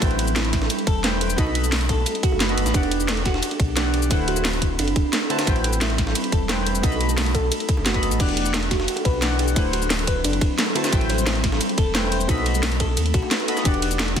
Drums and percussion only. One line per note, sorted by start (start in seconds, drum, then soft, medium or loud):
0.02 kick loud
0.02 closed hi-hat medium
0.02 ride medium
0.02 cabasa soft
0.11 ride soft
0.19 closed hi-hat medium
0.19 ride medium
0.19 high bongo medium
0.28 cabasa medium
0.36 snare loud
0.36 closed hi-hat medium
0.36 ride loud
0.36 high bongo medium
0.36 cabasa soft
0.45 closed hi-hat soft
0.53 kick medium
0.53 snare medium
0.53 closed hi-hat medium
0.53 ride medium
0.62 snare soft
0.62 high bongo medium
0.70 closed hi-hat medium
0.70 ride medium
0.70 cabasa soft
0.78 closed hi-hat soft
0.78 high bongo medium
0.87 kick loud
0.87 closed hi-hat medium
0.87 ride medium
1.04 snare loud
1.04 closed hi-hat medium
1.04 ride medium
1.04 high bongo medium
1.04 cabasa soft
1.21 closed hi-hat medium
1.21 ride medium
1.21 high bongo soft
1.30 cabasa medium
1.38 kick loud
1.38 closed hi-hat medium
1.38 ride medium
1.38 cabasa soft
1.47 high bongo medium
1.55 closed hi-hat medium
1.55 ride medium
1.64 high bongo medium
1.64 cabasa medium
1.72 snare loud
1.72 closed hi-hat medium
1.72 open hi-hat medium
1.72 cabasa soft
1.81 closed hi-hat soft
1.81 ride soft
1.89 kick medium
1.89 closed hi-hat medium
1.89 ride medium
1.89 high bongo medium
2.06 closed hi-hat medium
2.06 ride medium
2.06 high bongo medium
2.06 cabasa medium
2.15 closed hi-hat soft
2.23 kick loud
2.23 closed hi-hat medium
2.23 ride medium
2.23 cabasa soft
2.32 high bongo medium
2.40 snare loud
2.40 closed hi-hat medium
2.40 ride medium
2.40 cabasa soft
2.49 closed hi-hat soft
2.49 high bongo medium
2.58 closed hi-hat medium
2.58 ride medium
2.66 snare soft
2.66 cabasa medium
2.74 kick loud
2.74 closed hi-hat medium
2.74 ride medium
2.74 cabasa soft
2.83 ride soft
2.83 high bongo medium
2.91 closed hi-hat medium
2.91 ride medium
3.00 cabasa medium
3.09 snare loud
3.09 closed hi-hat medium
3.09 ride medium
3.09 high bongo medium
3.09 cabasa soft
3.17 closed hi-hat soft
3.25 kick medium
3.25 snare soft
3.25 closed hi-hat medium
3.25 ride medium
3.25 high bongo medium
3.34 snare soft
3.43 closed hi-hat medium
3.43 ride medium
3.43 cabasa medium
3.51 closed hi-hat soft
3.51 high bongo medium
3.60 kick loud
3.60 closed hi-hat medium
3.60 ride medium
3.68 high bongo medium
3.77 snare loud
3.77 closed hi-hat loud
3.77 ride medium
3.77 cabasa medium
3.94 closed hi-hat medium
3.94 ride medium
3.94 high bongo medium
4.02 cabasa medium
4.11 kick loud
4.11 closed hi-hat medium
4.11 ride medium
4.11 high bongo medium
4.11 cabasa soft
4.28 closed hi-hat medium
4.28 ride medium
4.36 high bongo medium
4.36 cabasa medium
4.45 snare loud
4.45 closed hi-hat medium
4.45 open hi-hat medium
4.45 cabasa medium
4.53 closed hi-hat soft
4.53 ride soft
4.53 high bongo soft
4.62 kick medium
4.62 closed hi-hat medium
4.62 ride medium
4.79 closed hi-hat loud
4.79 ride medium
4.79 high bongo medium
4.79 cabasa medium
4.88 closed hi-hat soft
4.96 kick loud
4.96 closed hi-hat medium
4.96 ride medium
4.96 high bongo medium
5.13 snare loud
5.13 closed hi-hat medium
5.13 ride medium
5.13 cabasa medium
5.21 high bongo medium
5.30 closed hi-hat medium
5.30 ride medium
5.39 snare loud
5.39 ride medium
5.39 high bongo medium
5.39 cabasa medium
5.47 kick loud
5.47 closed hi-hat medium
5.47 ride medium
5.47 cabasa medium
5.56 ride soft
5.64 closed hi-hat medium
5.64 ride medium
5.64 high bongo medium
5.73 cabasa medium
5.81 snare loud
5.81 closed hi-hat loud
5.81 ride medium
5.81 high bongo medium
5.81 cabasa medium
5.90 closed hi-hat soft
5.98 kick medium
5.98 snare soft
5.98 closed hi-hat medium
5.98 ride medium
6.07 snare soft
6.07 high bongo medium
6.15 closed hi-hat loud
6.15 ride medium
6.15 cabasa medium
6.23 closed hi-hat soft
6.23 high bongo soft
6.32 kick loud
6.32 closed hi-hat medium
6.32 ride medium
6.49 snare loud
6.49 closed hi-hat loud
6.49 ride medium
6.49 high bongo medium
6.49 cabasa medium
6.66 closed hi-hat medium
6.66 ride medium
6.66 high bongo medium
6.75 cabasa medium
6.83 kick loud
6.83 closed hi-hat loud
6.83 ride medium
6.83 cabasa soft
6.92 high bongo medium
6.92 cabasa soft
7.01 closed hi-hat medium
7.01 ride medium
7.09 high bongo medium
7.09 cabasa medium
7.18 snare loud
7.18 closed hi-hat loud
7.18 open hi-hat medium
7.18 cabasa soft
7.26 closed hi-hat soft
7.26 ride soft
7.34 kick medium
7.34 closed hi-hat medium
7.34 ride medium
7.34 high bongo medium
7.34 cabasa soft
7.51 closed hi-hat loud
7.51 ride medium
7.51 high bongo medium
7.51 cabasa medium
7.60 closed hi-hat soft
7.69 kick loud
7.69 closed hi-hat medium
7.69 ride medium
7.69 cabasa soft
7.77 high bongo medium
7.86 snare loud
7.86 closed hi-hat loud
7.86 ride medium
7.86 cabasa medium
7.94 kick medium
7.94 snare soft
7.94 closed hi-hat soft
7.94 high bongo medium
8.03 closed hi-hat medium
8.03 ride medium
8.03 cabasa soft
8.11 ride soft
8.11 cabasa medium
8.20 kick loud
8.20 closed hi-hat medium
8.20 crash medium
8.20 ride medium
8.20 cabasa soft
8.29 ride soft
8.29 high bongo soft
8.37 closed hi-hat medium
8.37 ride medium
8.46 cabasa medium
8.54 snare loud
8.54 closed hi-hat loud
8.54 ride medium
8.54 high bongo medium
8.54 cabasa soft
8.63 closed hi-hat soft
8.71 kick medium
8.71 snare medium
8.71 closed hi-hat medium
8.71 ride medium
8.71 high bongo medium
8.80 snare soft
8.88 closed hi-hat loud
8.88 ride medium
8.88 cabasa medium
8.96 closed hi-hat soft
8.96 high bongo medium
9.05 kick loud
9.05 closed hi-hat medium
9.05 ride medium
9.14 high bongo medium
9.22 snare loud
9.22 closed hi-hat loud
9.22 ride medium
9.22 cabasa medium
9.39 closed hi-hat medium
9.39 ride medium
9.39 high bongo medium
9.48 cabasa medium
9.56 kick loud
9.56 closed hi-hat medium
9.56 ride medium
9.56 high bongo medium
9.56 cabasa soft
9.73 closed hi-hat medium
9.73 ride medium
9.82 high bongo medium
9.82 cabasa medium
9.90 snare loud
9.90 closed hi-hat medium
9.90 open hi-hat medium
9.90 cabasa soft
9.98 closed hi-hat soft
9.98 ride soft
9.98 high bongo medium
10.07 kick medium
10.07 closed hi-hat medium
10.07 ride medium
10.24 closed hi-hat loud
10.24 ride medium
10.24 high bongo medium
10.24 cabasa soft
10.33 closed hi-hat soft
10.41 kick loud
10.41 closed hi-hat medium
10.41 ride medium
10.41 high bongo medium
10.58 snare loud
10.58 closed hi-hat loud
10.58 ride medium
10.58 cabasa medium
10.66 high bongo medium
10.75 closed hi-hat medium
10.75 ride medium
10.84 snare loud
10.84 ride medium
10.84 high bongo medium
10.84 cabasa medium
10.93 kick loud
10.93 closed hi-hat medium
10.93 ride medium
10.93 cabasa soft
11.01 ride soft
11.09 closed hi-hat medium
11.09 ride medium
11.09 high bongo medium
11.18 cabasa medium
11.27 snare loud
11.27 closed hi-hat medium
11.27 ride medium
11.27 high bongo medium
11.27 cabasa soft
11.35 closed hi-hat soft
11.44 kick medium
11.44 snare soft
11.44 closed hi-hat medium
11.44 ride medium
11.52 snare soft
11.52 high bongo medium
11.61 closed hi-hat medium
11.61 ride medium
11.61 cabasa soft
11.69 closed hi-hat soft
11.69 high bongo medium
11.78 kick loud
11.78 closed hi-hat medium
11.78 ride medium
11.95 snare loud
11.95 closed hi-hat loud
11.95 ride medium
11.95 high bongo medium
11.95 cabasa soft
12.12 closed hi-hat medium
12.12 ride medium
12.12 high bongo soft
12.21 cabasa medium
12.29 kick loud
12.29 closed hi-hat medium
12.29 ride medium
12.29 cabasa soft
12.38 high bongo medium
12.46 closed hi-hat medium
12.46 ride medium
12.55 high bongo medium
12.55 cabasa medium
12.63 snare loud
12.63 closed hi-hat medium
12.63 open hi-hat medium
12.63 cabasa soft
12.72 closed hi-hat soft
12.72 ride soft
12.80 kick medium
12.80 closed hi-hat medium
12.80 ride medium
12.80 high bongo medium
12.97 closed hi-hat medium
12.97 ride medium
12.97 high bongo medium
12.97 cabasa soft
13.06 closed hi-hat soft
13.14 kick loud
13.14 closed hi-hat medium
13.14 ride medium
13.14 cabasa soft
13.22 high bongo medium
13.31 snare loud
13.31 closed hi-hat medium
13.31 ride medium
13.31 cabasa soft
13.40 closed hi-hat soft
13.40 high bongo medium
13.48 closed hi-hat medium
13.48 ride medium
13.57 snare soft
13.57 cabasa medium
13.65 kick loud
13.65 closed hi-hat medium
13.65 ride medium
13.65 cabasa soft
13.74 ride soft
13.74 high bongo medium
13.82 closed hi-hat medium
13.82 ride medium
13.91 cabasa medium
13.99 snare loud
13.99 closed hi-hat medium
13.99 ride medium
13.99 high bongo medium
13.99 cabasa soft
14.08 closed hi-hat soft
14.16 kick medium
14.16 snare soft
14.16 closed hi-hat medium
14.16 ride medium
14.16 high bongo medium